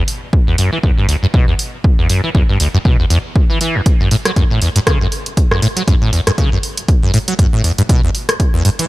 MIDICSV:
0, 0, Header, 1, 3, 480
1, 0, Start_track
1, 0, Tempo, 504202
1, 1755, Time_signature, 4, 2, 24, 8
1, 8458, End_track
2, 0, Start_track
2, 0, Title_t, "Acid bass"
2, 0, Program_c, 0, 38
2, 450, Note_on_c, 0, 40, 74
2, 536, Note_off_c, 0, 40, 0
2, 553, Note_on_c, 0, 42, 73
2, 666, Note_off_c, 0, 42, 0
2, 688, Note_on_c, 0, 52, 73
2, 747, Note_off_c, 0, 52, 0
2, 794, Note_on_c, 0, 40, 80
2, 869, Note_off_c, 0, 40, 0
2, 929, Note_on_c, 0, 43, 71
2, 1015, Note_off_c, 0, 43, 0
2, 1033, Note_on_c, 0, 38, 70
2, 1108, Note_off_c, 0, 38, 0
2, 1169, Note_on_c, 0, 42, 101
2, 1204, Note_off_c, 0, 42, 0
2, 1274, Note_on_c, 0, 47, 76
2, 1386, Note_off_c, 0, 47, 0
2, 1409, Note_on_c, 0, 40, 72
2, 1467, Note_off_c, 0, 40, 0
2, 1889, Note_on_c, 0, 40, 72
2, 1976, Note_off_c, 0, 40, 0
2, 1994, Note_on_c, 0, 42, 72
2, 2106, Note_off_c, 0, 42, 0
2, 2130, Note_on_c, 0, 52, 75
2, 2188, Note_off_c, 0, 52, 0
2, 2234, Note_on_c, 0, 40, 75
2, 2309, Note_off_c, 0, 40, 0
2, 2370, Note_on_c, 0, 43, 75
2, 2456, Note_off_c, 0, 43, 0
2, 2475, Note_on_c, 0, 38, 72
2, 2549, Note_off_c, 0, 38, 0
2, 2610, Note_on_c, 0, 42, 101
2, 2644, Note_off_c, 0, 42, 0
2, 2715, Note_on_c, 0, 47, 79
2, 2826, Note_off_c, 0, 47, 0
2, 2850, Note_on_c, 0, 40, 73
2, 2908, Note_off_c, 0, 40, 0
2, 2955, Note_on_c, 0, 40, 94
2, 3029, Note_off_c, 0, 40, 0
2, 3330, Note_on_c, 0, 52, 72
2, 3416, Note_off_c, 0, 52, 0
2, 3435, Note_on_c, 0, 52, 75
2, 3570, Note_on_c, 0, 40, 72
2, 3584, Note_off_c, 0, 52, 0
2, 3627, Note_off_c, 0, 40, 0
2, 3810, Note_on_c, 0, 42, 73
2, 3896, Note_off_c, 0, 42, 0
2, 3914, Note_on_c, 0, 45, 95
2, 3959, Note_off_c, 0, 45, 0
2, 4050, Note_on_c, 0, 54, 74
2, 4107, Note_off_c, 0, 54, 0
2, 4153, Note_on_c, 0, 42, 75
2, 4228, Note_off_c, 0, 42, 0
2, 4289, Note_on_c, 0, 45, 74
2, 4376, Note_off_c, 0, 45, 0
2, 4394, Note_on_c, 0, 40, 71
2, 4468, Note_off_c, 0, 40, 0
2, 4528, Note_on_c, 0, 43, 103
2, 4563, Note_off_c, 0, 43, 0
2, 4633, Note_on_c, 0, 49, 79
2, 4746, Note_off_c, 0, 49, 0
2, 4769, Note_on_c, 0, 42, 74
2, 4827, Note_off_c, 0, 42, 0
2, 5248, Note_on_c, 0, 42, 72
2, 5335, Note_off_c, 0, 42, 0
2, 5353, Note_on_c, 0, 45, 101
2, 5398, Note_off_c, 0, 45, 0
2, 5487, Note_on_c, 0, 54, 77
2, 5546, Note_off_c, 0, 54, 0
2, 5593, Note_on_c, 0, 42, 83
2, 5668, Note_off_c, 0, 42, 0
2, 5728, Note_on_c, 0, 45, 73
2, 5815, Note_off_c, 0, 45, 0
2, 5834, Note_on_c, 0, 40, 73
2, 5908, Note_off_c, 0, 40, 0
2, 5970, Note_on_c, 0, 43, 101
2, 6004, Note_off_c, 0, 43, 0
2, 6074, Note_on_c, 0, 49, 76
2, 6186, Note_off_c, 0, 49, 0
2, 6210, Note_on_c, 0, 42, 73
2, 6267, Note_off_c, 0, 42, 0
2, 6689, Note_on_c, 0, 42, 69
2, 6776, Note_off_c, 0, 42, 0
2, 6794, Note_on_c, 0, 45, 96
2, 6839, Note_off_c, 0, 45, 0
2, 6930, Note_on_c, 0, 54, 75
2, 6987, Note_off_c, 0, 54, 0
2, 7034, Note_on_c, 0, 42, 81
2, 7109, Note_off_c, 0, 42, 0
2, 7169, Note_on_c, 0, 45, 70
2, 7256, Note_off_c, 0, 45, 0
2, 7274, Note_on_c, 0, 40, 74
2, 7349, Note_off_c, 0, 40, 0
2, 7409, Note_on_c, 0, 43, 96
2, 7444, Note_off_c, 0, 43, 0
2, 7514, Note_on_c, 0, 47, 80
2, 7626, Note_off_c, 0, 47, 0
2, 7650, Note_on_c, 0, 40, 73
2, 7707, Note_off_c, 0, 40, 0
2, 8129, Note_on_c, 0, 40, 73
2, 8216, Note_off_c, 0, 40, 0
2, 8234, Note_on_c, 0, 43, 95
2, 8279, Note_off_c, 0, 43, 0
2, 8369, Note_on_c, 0, 52, 73
2, 8427, Note_off_c, 0, 52, 0
2, 8458, End_track
3, 0, Start_track
3, 0, Title_t, "Drums"
3, 74, Note_on_c, 9, 46, 101
3, 170, Note_off_c, 9, 46, 0
3, 314, Note_on_c, 9, 36, 104
3, 409, Note_off_c, 9, 36, 0
3, 554, Note_on_c, 9, 46, 88
3, 649, Note_off_c, 9, 46, 0
3, 794, Note_on_c, 9, 36, 116
3, 890, Note_off_c, 9, 36, 0
3, 1034, Note_on_c, 9, 46, 103
3, 1130, Note_off_c, 9, 46, 0
3, 1274, Note_on_c, 9, 36, 105
3, 1370, Note_off_c, 9, 36, 0
3, 1514, Note_on_c, 9, 46, 89
3, 1610, Note_off_c, 9, 46, 0
3, 1755, Note_on_c, 9, 36, 116
3, 1850, Note_off_c, 9, 36, 0
3, 1994, Note_on_c, 9, 46, 100
3, 2090, Note_off_c, 9, 46, 0
3, 2235, Note_on_c, 9, 36, 101
3, 2330, Note_off_c, 9, 36, 0
3, 2475, Note_on_c, 9, 46, 85
3, 2570, Note_off_c, 9, 46, 0
3, 2715, Note_on_c, 9, 36, 112
3, 2810, Note_off_c, 9, 36, 0
3, 2954, Note_on_c, 9, 46, 99
3, 3050, Note_off_c, 9, 46, 0
3, 3195, Note_on_c, 9, 36, 101
3, 3290, Note_off_c, 9, 36, 0
3, 3434, Note_on_c, 9, 46, 84
3, 3530, Note_off_c, 9, 46, 0
3, 3674, Note_on_c, 9, 36, 112
3, 3674, Note_on_c, 9, 42, 47
3, 3769, Note_off_c, 9, 42, 0
3, 3770, Note_off_c, 9, 36, 0
3, 3915, Note_on_c, 9, 46, 95
3, 4010, Note_off_c, 9, 46, 0
3, 4050, Note_on_c, 9, 37, 65
3, 4050, Note_on_c, 9, 42, 61
3, 4145, Note_off_c, 9, 37, 0
3, 4145, Note_off_c, 9, 42, 0
3, 4154, Note_on_c, 9, 36, 94
3, 4155, Note_on_c, 9, 42, 45
3, 4250, Note_off_c, 9, 36, 0
3, 4250, Note_off_c, 9, 42, 0
3, 4394, Note_on_c, 9, 46, 86
3, 4489, Note_off_c, 9, 46, 0
3, 4530, Note_on_c, 9, 42, 58
3, 4625, Note_off_c, 9, 42, 0
3, 4634, Note_on_c, 9, 36, 113
3, 4634, Note_on_c, 9, 37, 80
3, 4634, Note_on_c, 9, 42, 45
3, 4729, Note_off_c, 9, 36, 0
3, 4729, Note_off_c, 9, 37, 0
3, 4729, Note_off_c, 9, 42, 0
3, 4874, Note_on_c, 9, 46, 93
3, 4969, Note_off_c, 9, 46, 0
3, 5010, Note_on_c, 9, 42, 58
3, 5105, Note_off_c, 9, 42, 0
3, 5114, Note_on_c, 9, 36, 97
3, 5114, Note_on_c, 9, 42, 47
3, 5209, Note_off_c, 9, 36, 0
3, 5210, Note_off_c, 9, 42, 0
3, 5250, Note_on_c, 9, 37, 64
3, 5345, Note_off_c, 9, 37, 0
3, 5354, Note_on_c, 9, 46, 85
3, 5450, Note_off_c, 9, 46, 0
3, 5490, Note_on_c, 9, 42, 57
3, 5585, Note_off_c, 9, 42, 0
3, 5594, Note_on_c, 9, 36, 102
3, 5594, Note_on_c, 9, 42, 51
3, 5689, Note_off_c, 9, 36, 0
3, 5690, Note_off_c, 9, 42, 0
3, 5834, Note_on_c, 9, 46, 92
3, 5929, Note_off_c, 9, 46, 0
3, 5970, Note_on_c, 9, 37, 65
3, 5970, Note_on_c, 9, 42, 63
3, 6065, Note_off_c, 9, 37, 0
3, 6065, Note_off_c, 9, 42, 0
3, 6074, Note_on_c, 9, 36, 92
3, 6074, Note_on_c, 9, 42, 47
3, 6169, Note_off_c, 9, 36, 0
3, 6170, Note_off_c, 9, 42, 0
3, 6314, Note_on_c, 9, 46, 79
3, 6409, Note_off_c, 9, 46, 0
3, 6450, Note_on_c, 9, 42, 60
3, 6545, Note_off_c, 9, 42, 0
3, 6554, Note_on_c, 9, 36, 108
3, 6554, Note_on_c, 9, 42, 47
3, 6649, Note_off_c, 9, 36, 0
3, 6649, Note_off_c, 9, 42, 0
3, 6794, Note_on_c, 9, 46, 92
3, 6889, Note_off_c, 9, 46, 0
3, 6930, Note_on_c, 9, 42, 60
3, 7025, Note_off_c, 9, 42, 0
3, 7034, Note_on_c, 9, 36, 97
3, 7035, Note_on_c, 9, 42, 50
3, 7129, Note_off_c, 9, 36, 0
3, 7130, Note_off_c, 9, 42, 0
3, 7275, Note_on_c, 9, 46, 82
3, 7370, Note_off_c, 9, 46, 0
3, 7410, Note_on_c, 9, 42, 58
3, 7506, Note_off_c, 9, 42, 0
3, 7514, Note_on_c, 9, 36, 108
3, 7515, Note_on_c, 9, 42, 53
3, 7609, Note_off_c, 9, 36, 0
3, 7611, Note_off_c, 9, 42, 0
3, 7755, Note_on_c, 9, 46, 88
3, 7850, Note_off_c, 9, 46, 0
3, 7891, Note_on_c, 9, 37, 66
3, 7891, Note_on_c, 9, 42, 63
3, 7986, Note_off_c, 9, 37, 0
3, 7986, Note_off_c, 9, 42, 0
3, 7994, Note_on_c, 9, 36, 92
3, 7995, Note_on_c, 9, 42, 51
3, 8089, Note_off_c, 9, 36, 0
3, 8090, Note_off_c, 9, 42, 0
3, 8235, Note_on_c, 9, 46, 83
3, 8330, Note_off_c, 9, 46, 0
3, 8370, Note_on_c, 9, 42, 62
3, 8458, Note_off_c, 9, 42, 0
3, 8458, End_track
0, 0, End_of_file